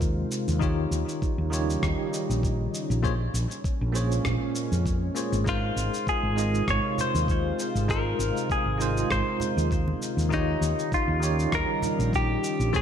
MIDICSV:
0, 0, Header, 1, 6, 480
1, 0, Start_track
1, 0, Key_signature, -4, "major"
1, 0, Tempo, 606061
1, 487, Time_signature, 4, 2, 24, 8
1, 10152, End_track
2, 0, Start_track
2, 0, Title_t, "Clean electric guitar"
2, 0, Program_c, 0, 27
2, 4347, Note_on_c, 0, 65, 92
2, 4820, Note_off_c, 0, 65, 0
2, 4824, Note_on_c, 0, 68, 93
2, 5307, Note_off_c, 0, 68, 0
2, 5310, Note_on_c, 0, 73, 101
2, 5546, Note_off_c, 0, 73, 0
2, 5550, Note_on_c, 0, 72, 98
2, 6227, Note_off_c, 0, 72, 0
2, 6262, Note_on_c, 0, 70, 99
2, 6742, Note_off_c, 0, 70, 0
2, 6745, Note_on_c, 0, 68, 90
2, 7217, Note_off_c, 0, 68, 0
2, 7221, Note_on_c, 0, 72, 92
2, 7662, Note_off_c, 0, 72, 0
2, 8187, Note_on_c, 0, 63, 88
2, 8664, Note_off_c, 0, 63, 0
2, 8667, Note_on_c, 0, 65, 92
2, 9146, Note_on_c, 0, 70, 108
2, 9151, Note_off_c, 0, 65, 0
2, 9624, Note_off_c, 0, 70, 0
2, 9628, Note_on_c, 0, 67, 97
2, 10104, Note_off_c, 0, 67, 0
2, 10107, Note_on_c, 0, 68, 93
2, 10152, Note_off_c, 0, 68, 0
2, 10152, End_track
3, 0, Start_track
3, 0, Title_t, "Tine electric piano"
3, 0, Program_c, 1, 4
3, 0, Control_c, 1, 64, 127
3, 0, Note_on_c, 1, 56, 84
3, 0, Note_on_c, 1, 63, 82
3, 0, Note_on_c, 1, 65, 73
3, 0, Note_on_c, 1, 70, 79
3, 0, Note_on_c, 1, 72, 92
3, 455, Note_off_c, 1, 56, 0
3, 459, Note_off_c, 1, 63, 0
3, 462, Note_off_c, 1, 65, 0
3, 466, Note_off_c, 1, 70, 0
3, 469, Note_on_c, 1, 51, 93
3, 470, Note_off_c, 1, 72, 0
3, 477, Note_on_c, 1, 63, 84
3, 485, Note_on_c, 1, 65, 90
3, 493, Note_on_c, 1, 67, 83
3, 498, Control_c, 1, 64, 0
3, 498, Note_on_c, 1, 73, 98
3, 653, Control_c, 1, 64, 127
3, 1172, Note_off_c, 1, 51, 0
3, 1176, Note_off_c, 1, 63, 0
3, 1180, Note_off_c, 1, 65, 0
3, 1184, Note_off_c, 1, 67, 0
3, 1186, Note_off_c, 1, 73, 0
3, 1186, Note_on_c, 1, 51, 83
3, 1193, Note_on_c, 1, 63, 72
3, 1201, Note_on_c, 1, 65, 73
3, 1209, Note_on_c, 1, 67, 72
3, 1216, Note_on_c, 1, 73, 91
3, 2370, Note_off_c, 1, 51, 0
3, 2374, Note_off_c, 1, 63, 0
3, 2378, Note_off_c, 1, 65, 0
3, 2382, Note_off_c, 1, 67, 0
3, 2385, Note_off_c, 1, 73, 0
3, 2396, Note_on_c, 1, 58, 88
3, 2399, Note_on_c, 1, 65, 85
3, 2404, Note_on_c, 1, 68, 83
3, 2405, Note_on_c, 1, 72, 91
3, 2411, Note_on_c, 1, 73, 104
3, 2420, Control_c, 1, 64, 0
3, 2479, Note_off_c, 1, 58, 0
3, 2480, Note_off_c, 1, 65, 0
3, 2483, Note_off_c, 1, 68, 0
3, 2483, Note_off_c, 1, 72, 0
3, 2486, Note_off_c, 1, 73, 0
3, 2571, Control_c, 1, 64, 127
3, 3109, Note_on_c, 1, 58, 87
3, 3116, Note_on_c, 1, 65, 76
3, 3121, Note_on_c, 1, 68, 76
3, 3130, Note_on_c, 1, 72, 74
3, 3138, Note_on_c, 1, 73, 94
3, 4056, Note_off_c, 1, 58, 0
3, 4060, Note_off_c, 1, 65, 0
3, 4062, Note_off_c, 1, 68, 0
3, 4067, Note_off_c, 1, 72, 0
3, 4071, Note_off_c, 1, 73, 0
3, 4077, Note_on_c, 1, 58, 75
3, 4083, Note_on_c, 1, 65, 68
3, 4086, Note_on_c, 1, 68, 67
3, 4088, Note_on_c, 1, 72, 68
3, 4094, Note_on_c, 1, 73, 83
3, 4296, Note_off_c, 1, 58, 0
3, 4299, Note_off_c, 1, 65, 0
3, 4301, Note_off_c, 1, 68, 0
3, 4301, Note_off_c, 1, 72, 0
3, 4304, Note_off_c, 1, 73, 0
3, 4311, Note_on_c, 1, 56, 93
3, 4320, Note_on_c, 1, 63, 80
3, 4327, Note_on_c, 1, 65, 80
3, 4332, Note_on_c, 1, 70, 84
3, 4337, Control_c, 1, 64, 0
3, 4340, Note_on_c, 1, 72, 104
3, 4499, Control_c, 1, 64, 127
3, 5013, Note_off_c, 1, 56, 0
3, 5018, Note_off_c, 1, 63, 0
3, 5021, Note_off_c, 1, 65, 0
3, 5023, Note_off_c, 1, 70, 0
3, 5028, Note_off_c, 1, 72, 0
3, 5035, Note_on_c, 1, 56, 79
3, 5044, Note_on_c, 1, 63, 76
3, 5051, Note_on_c, 1, 65, 79
3, 5057, Note_on_c, 1, 70, 69
3, 5064, Note_on_c, 1, 75, 83
3, 6215, Note_off_c, 1, 56, 0
3, 6219, Note_off_c, 1, 63, 0
3, 6223, Note_off_c, 1, 65, 0
3, 6226, Note_off_c, 1, 70, 0
3, 6230, Note_off_c, 1, 75, 0
3, 6242, Note_on_c, 1, 56, 90
3, 6243, Note_on_c, 1, 63, 87
3, 6247, Note_on_c, 1, 65, 87
3, 6252, Note_on_c, 1, 70, 91
3, 6255, Note_on_c, 1, 72, 108
3, 6322, Note_off_c, 1, 56, 0
3, 6322, Note_off_c, 1, 63, 0
3, 6324, Note_off_c, 1, 65, 0
3, 6326, Note_off_c, 1, 70, 0
3, 6328, Note_off_c, 1, 72, 0
3, 6953, Note_on_c, 1, 56, 90
3, 6962, Note_on_c, 1, 63, 80
3, 6967, Note_on_c, 1, 65, 75
3, 6975, Note_on_c, 1, 70, 81
3, 6983, Note_on_c, 1, 72, 100
3, 8134, Note_off_c, 1, 56, 0
3, 8138, Note_off_c, 1, 63, 0
3, 8141, Note_off_c, 1, 65, 0
3, 8145, Note_off_c, 1, 70, 0
3, 8149, Note_off_c, 1, 72, 0
3, 8150, Note_on_c, 1, 51, 91
3, 8160, Note_on_c, 1, 63, 88
3, 8167, Note_on_c, 1, 65, 86
3, 8175, Control_c, 1, 64, 0
3, 8176, Note_on_c, 1, 67, 87
3, 8183, Note_on_c, 1, 73, 105
3, 8314, Control_c, 1, 64, 127
3, 8852, Note_off_c, 1, 51, 0
3, 8858, Note_off_c, 1, 63, 0
3, 8861, Note_off_c, 1, 65, 0
3, 8865, Note_off_c, 1, 67, 0
3, 8869, Note_off_c, 1, 73, 0
3, 8871, Note_on_c, 1, 51, 86
3, 8879, Note_on_c, 1, 63, 76
3, 8884, Note_on_c, 1, 65, 75
3, 8894, Note_on_c, 1, 67, 78
3, 8899, Note_on_c, 1, 73, 92
3, 10053, Note_off_c, 1, 51, 0
3, 10057, Note_off_c, 1, 63, 0
3, 10060, Note_off_c, 1, 65, 0
3, 10065, Note_off_c, 1, 67, 0
3, 10067, Note_off_c, 1, 73, 0
3, 10081, Note_on_c, 1, 58, 99
3, 10082, Note_on_c, 1, 65, 89
3, 10087, Note_on_c, 1, 68, 89
3, 10090, Note_on_c, 1, 72, 89
3, 10092, Note_on_c, 1, 73, 104
3, 10097, Control_c, 1, 64, 0
3, 10152, Note_off_c, 1, 58, 0
3, 10152, Note_off_c, 1, 65, 0
3, 10152, Note_off_c, 1, 68, 0
3, 10152, Note_off_c, 1, 72, 0
3, 10152, Note_off_c, 1, 73, 0
3, 10152, End_track
4, 0, Start_track
4, 0, Title_t, "Analog synth pad"
4, 0, Program_c, 2, 89
4, 0, Note_on_c, 2, 48, 73
4, 0, Note_on_c, 2, 56, 67
4, 0, Note_on_c, 2, 65, 80
4, 455, Note_off_c, 2, 48, 0
4, 457, Note_off_c, 2, 56, 0
4, 457, Note_off_c, 2, 65, 0
4, 495, Note_on_c, 2, 63, 84
4, 497, Note_on_c, 2, 55, 70
4, 498, Note_on_c, 2, 49, 77
4, 2392, Note_off_c, 2, 63, 0
4, 2393, Note_off_c, 2, 55, 0
4, 2394, Note_off_c, 2, 49, 0
4, 2405, Note_on_c, 2, 61, 80
4, 2407, Note_on_c, 2, 46, 75
4, 2407, Note_on_c, 2, 56, 66
4, 4307, Note_off_c, 2, 61, 0
4, 4308, Note_off_c, 2, 46, 0
4, 4323, Note_on_c, 2, 65, 81
4, 4324, Note_on_c, 2, 48, 73
4, 8134, Note_off_c, 2, 48, 0
4, 8134, Note_off_c, 2, 65, 0
4, 8135, Note_off_c, 2, 56, 0
4, 8168, Note_on_c, 2, 63, 80
4, 8169, Note_on_c, 2, 55, 71
4, 8172, Note_on_c, 2, 49, 75
4, 10068, Note_off_c, 2, 63, 0
4, 10069, Note_off_c, 2, 55, 0
4, 10070, Note_off_c, 2, 49, 0
4, 10083, Note_on_c, 2, 61, 82
4, 10085, Note_on_c, 2, 46, 77
4, 10086, Note_on_c, 2, 56, 72
4, 10152, Note_off_c, 2, 46, 0
4, 10152, Note_off_c, 2, 56, 0
4, 10152, Note_off_c, 2, 61, 0
4, 10152, End_track
5, 0, Start_track
5, 0, Title_t, "Fretless electric bass"
5, 0, Program_c, 3, 35
5, 0, Note_on_c, 3, 39, 83
5, 188, Note_off_c, 3, 39, 0
5, 379, Note_on_c, 3, 39, 81
5, 669, Note_off_c, 3, 39, 0
5, 722, Note_on_c, 3, 39, 92
5, 812, Note_off_c, 3, 39, 0
5, 1095, Note_on_c, 3, 39, 92
5, 1387, Note_off_c, 3, 39, 0
5, 1447, Note_on_c, 3, 39, 91
5, 1534, Note_off_c, 3, 39, 0
5, 1818, Note_on_c, 3, 34, 73
5, 2109, Note_off_c, 3, 34, 0
5, 2296, Note_on_c, 3, 34, 82
5, 2588, Note_off_c, 3, 34, 0
5, 2645, Note_on_c, 3, 34, 93
5, 2733, Note_off_c, 3, 34, 0
5, 3019, Note_on_c, 3, 34, 92
5, 3310, Note_off_c, 3, 34, 0
5, 3367, Note_on_c, 3, 34, 86
5, 3454, Note_off_c, 3, 34, 0
5, 3737, Note_on_c, 3, 41, 79
5, 4028, Note_off_c, 3, 41, 0
5, 4217, Note_on_c, 3, 32, 96
5, 4508, Note_off_c, 3, 32, 0
5, 4564, Note_on_c, 3, 32, 91
5, 4653, Note_off_c, 3, 32, 0
5, 4936, Note_on_c, 3, 32, 86
5, 5228, Note_off_c, 3, 32, 0
5, 5287, Note_on_c, 3, 32, 93
5, 5375, Note_off_c, 3, 32, 0
5, 5659, Note_on_c, 3, 39, 77
5, 5949, Note_off_c, 3, 39, 0
5, 6140, Note_on_c, 3, 32, 78
5, 6430, Note_off_c, 3, 32, 0
5, 6486, Note_on_c, 3, 32, 96
5, 6574, Note_off_c, 3, 32, 0
5, 6857, Note_on_c, 3, 32, 89
5, 7148, Note_off_c, 3, 32, 0
5, 7210, Note_on_c, 3, 32, 85
5, 7296, Note_off_c, 3, 32, 0
5, 7579, Note_on_c, 3, 39, 79
5, 7869, Note_off_c, 3, 39, 0
5, 8055, Note_on_c, 3, 39, 82
5, 8347, Note_off_c, 3, 39, 0
5, 8405, Note_on_c, 3, 39, 97
5, 8493, Note_off_c, 3, 39, 0
5, 8774, Note_on_c, 3, 39, 94
5, 9067, Note_off_c, 3, 39, 0
5, 9128, Note_on_c, 3, 39, 93
5, 9215, Note_off_c, 3, 39, 0
5, 9495, Note_on_c, 3, 34, 80
5, 9787, Note_off_c, 3, 34, 0
5, 9976, Note_on_c, 3, 34, 84
5, 10152, Note_off_c, 3, 34, 0
5, 10152, End_track
6, 0, Start_track
6, 0, Title_t, "Drums"
6, 7, Note_on_c, 9, 36, 103
6, 10, Note_on_c, 9, 82, 33
6, 86, Note_off_c, 9, 36, 0
6, 89, Note_off_c, 9, 82, 0
6, 249, Note_on_c, 9, 82, 73
6, 328, Note_off_c, 9, 82, 0
6, 380, Note_on_c, 9, 82, 42
6, 460, Note_off_c, 9, 82, 0
6, 487, Note_on_c, 9, 36, 102
6, 488, Note_on_c, 9, 82, 33
6, 566, Note_off_c, 9, 36, 0
6, 567, Note_off_c, 9, 82, 0
6, 729, Note_on_c, 9, 82, 77
6, 808, Note_off_c, 9, 82, 0
6, 861, Note_on_c, 9, 82, 44
6, 941, Note_off_c, 9, 82, 0
6, 967, Note_on_c, 9, 36, 106
6, 971, Note_on_c, 9, 82, 29
6, 1046, Note_off_c, 9, 36, 0
6, 1051, Note_off_c, 9, 82, 0
6, 1211, Note_on_c, 9, 82, 71
6, 1290, Note_off_c, 9, 82, 0
6, 1346, Note_on_c, 9, 82, 47
6, 1425, Note_off_c, 9, 82, 0
6, 1447, Note_on_c, 9, 36, 92
6, 1448, Note_on_c, 9, 37, 76
6, 1453, Note_on_c, 9, 82, 33
6, 1526, Note_off_c, 9, 36, 0
6, 1528, Note_off_c, 9, 37, 0
6, 1533, Note_off_c, 9, 82, 0
6, 1691, Note_on_c, 9, 82, 76
6, 1771, Note_off_c, 9, 82, 0
6, 1825, Note_on_c, 9, 82, 45
6, 1904, Note_off_c, 9, 82, 0
6, 1927, Note_on_c, 9, 36, 110
6, 1935, Note_on_c, 9, 82, 35
6, 2006, Note_off_c, 9, 36, 0
6, 2014, Note_off_c, 9, 82, 0
6, 2174, Note_on_c, 9, 82, 71
6, 2253, Note_off_c, 9, 82, 0
6, 2304, Note_on_c, 9, 82, 43
6, 2384, Note_off_c, 9, 82, 0
6, 2406, Note_on_c, 9, 36, 97
6, 2412, Note_on_c, 9, 82, 34
6, 2486, Note_off_c, 9, 36, 0
6, 2491, Note_off_c, 9, 82, 0
6, 2651, Note_on_c, 9, 82, 79
6, 2730, Note_off_c, 9, 82, 0
6, 2782, Note_on_c, 9, 82, 43
6, 2861, Note_off_c, 9, 82, 0
6, 2886, Note_on_c, 9, 36, 107
6, 2890, Note_on_c, 9, 82, 29
6, 2965, Note_off_c, 9, 36, 0
6, 2969, Note_off_c, 9, 82, 0
6, 3129, Note_on_c, 9, 82, 73
6, 3208, Note_off_c, 9, 82, 0
6, 3261, Note_on_c, 9, 82, 46
6, 3340, Note_off_c, 9, 82, 0
6, 3365, Note_on_c, 9, 37, 69
6, 3366, Note_on_c, 9, 36, 94
6, 3370, Note_on_c, 9, 82, 32
6, 3444, Note_off_c, 9, 37, 0
6, 3445, Note_off_c, 9, 36, 0
6, 3449, Note_off_c, 9, 82, 0
6, 3607, Note_on_c, 9, 82, 75
6, 3687, Note_off_c, 9, 82, 0
6, 3740, Note_on_c, 9, 82, 44
6, 3820, Note_off_c, 9, 82, 0
6, 3846, Note_on_c, 9, 36, 107
6, 3850, Note_on_c, 9, 82, 34
6, 3926, Note_off_c, 9, 36, 0
6, 3930, Note_off_c, 9, 82, 0
6, 4087, Note_on_c, 9, 82, 73
6, 4166, Note_off_c, 9, 82, 0
6, 4221, Note_on_c, 9, 82, 43
6, 4300, Note_off_c, 9, 82, 0
6, 4326, Note_on_c, 9, 36, 101
6, 4332, Note_on_c, 9, 82, 32
6, 4406, Note_off_c, 9, 36, 0
6, 4411, Note_off_c, 9, 82, 0
6, 4571, Note_on_c, 9, 82, 79
6, 4651, Note_off_c, 9, 82, 0
6, 4704, Note_on_c, 9, 82, 40
6, 4783, Note_off_c, 9, 82, 0
6, 4807, Note_on_c, 9, 36, 97
6, 4813, Note_on_c, 9, 82, 27
6, 4886, Note_off_c, 9, 36, 0
6, 4892, Note_off_c, 9, 82, 0
6, 5053, Note_on_c, 9, 82, 69
6, 5132, Note_off_c, 9, 82, 0
6, 5184, Note_on_c, 9, 82, 43
6, 5263, Note_off_c, 9, 82, 0
6, 5288, Note_on_c, 9, 36, 96
6, 5289, Note_on_c, 9, 37, 69
6, 5294, Note_on_c, 9, 82, 31
6, 5367, Note_off_c, 9, 36, 0
6, 5368, Note_off_c, 9, 37, 0
6, 5374, Note_off_c, 9, 82, 0
6, 5528, Note_on_c, 9, 64, 68
6, 5534, Note_on_c, 9, 82, 72
6, 5607, Note_off_c, 9, 64, 0
6, 5613, Note_off_c, 9, 82, 0
6, 5664, Note_on_c, 9, 82, 42
6, 5743, Note_off_c, 9, 82, 0
6, 5768, Note_on_c, 9, 36, 107
6, 5773, Note_on_c, 9, 82, 34
6, 5847, Note_off_c, 9, 36, 0
6, 5853, Note_off_c, 9, 82, 0
6, 6014, Note_on_c, 9, 82, 70
6, 6093, Note_off_c, 9, 82, 0
6, 6144, Note_on_c, 9, 82, 40
6, 6224, Note_off_c, 9, 82, 0
6, 6249, Note_on_c, 9, 36, 97
6, 6253, Note_on_c, 9, 82, 30
6, 6328, Note_off_c, 9, 36, 0
6, 6332, Note_off_c, 9, 82, 0
6, 6494, Note_on_c, 9, 82, 76
6, 6573, Note_off_c, 9, 82, 0
6, 6629, Note_on_c, 9, 82, 39
6, 6708, Note_off_c, 9, 82, 0
6, 6729, Note_on_c, 9, 36, 101
6, 6735, Note_on_c, 9, 82, 28
6, 6808, Note_off_c, 9, 36, 0
6, 6814, Note_off_c, 9, 82, 0
6, 6975, Note_on_c, 9, 82, 68
6, 7055, Note_off_c, 9, 82, 0
6, 7106, Note_on_c, 9, 82, 43
6, 7185, Note_off_c, 9, 82, 0
6, 7209, Note_on_c, 9, 36, 90
6, 7211, Note_on_c, 9, 37, 70
6, 7217, Note_on_c, 9, 82, 31
6, 7289, Note_off_c, 9, 36, 0
6, 7291, Note_off_c, 9, 37, 0
6, 7296, Note_off_c, 9, 82, 0
6, 7444, Note_on_c, 9, 64, 75
6, 7456, Note_on_c, 9, 82, 64
6, 7524, Note_off_c, 9, 64, 0
6, 7536, Note_off_c, 9, 82, 0
6, 7587, Note_on_c, 9, 82, 41
6, 7667, Note_off_c, 9, 82, 0
6, 7689, Note_on_c, 9, 36, 99
6, 7696, Note_on_c, 9, 82, 34
6, 7768, Note_off_c, 9, 36, 0
6, 7775, Note_off_c, 9, 82, 0
6, 7822, Note_on_c, 9, 63, 78
6, 7902, Note_off_c, 9, 63, 0
6, 7937, Note_on_c, 9, 82, 68
6, 8016, Note_off_c, 9, 82, 0
6, 8067, Note_on_c, 9, 82, 40
6, 8146, Note_off_c, 9, 82, 0
6, 8168, Note_on_c, 9, 36, 93
6, 8173, Note_on_c, 9, 82, 31
6, 8247, Note_off_c, 9, 36, 0
6, 8253, Note_off_c, 9, 82, 0
6, 8414, Note_on_c, 9, 82, 74
6, 8493, Note_off_c, 9, 82, 0
6, 8547, Note_on_c, 9, 82, 38
6, 8626, Note_off_c, 9, 82, 0
6, 8649, Note_on_c, 9, 36, 98
6, 8652, Note_on_c, 9, 82, 30
6, 8728, Note_off_c, 9, 36, 0
6, 8732, Note_off_c, 9, 82, 0
6, 8891, Note_on_c, 9, 82, 73
6, 8971, Note_off_c, 9, 82, 0
6, 9023, Note_on_c, 9, 82, 41
6, 9102, Note_off_c, 9, 82, 0
6, 9126, Note_on_c, 9, 37, 71
6, 9129, Note_on_c, 9, 36, 91
6, 9131, Note_on_c, 9, 82, 28
6, 9205, Note_off_c, 9, 37, 0
6, 9208, Note_off_c, 9, 36, 0
6, 9210, Note_off_c, 9, 82, 0
6, 9364, Note_on_c, 9, 64, 82
6, 9370, Note_on_c, 9, 82, 65
6, 9443, Note_off_c, 9, 64, 0
6, 9449, Note_off_c, 9, 82, 0
6, 9503, Note_on_c, 9, 82, 40
6, 9582, Note_off_c, 9, 82, 0
6, 9609, Note_on_c, 9, 36, 102
6, 9612, Note_on_c, 9, 82, 33
6, 9688, Note_off_c, 9, 36, 0
6, 9691, Note_off_c, 9, 82, 0
6, 9851, Note_on_c, 9, 82, 70
6, 9930, Note_off_c, 9, 82, 0
6, 9981, Note_on_c, 9, 82, 40
6, 10061, Note_off_c, 9, 82, 0
6, 10089, Note_on_c, 9, 36, 101
6, 10092, Note_on_c, 9, 82, 31
6, 10152, Note_off_c, 9, 36, 0
6, 10152, Note_off_c, 9, 82, 0
6, 10152, End_track
0, 0, End_of_file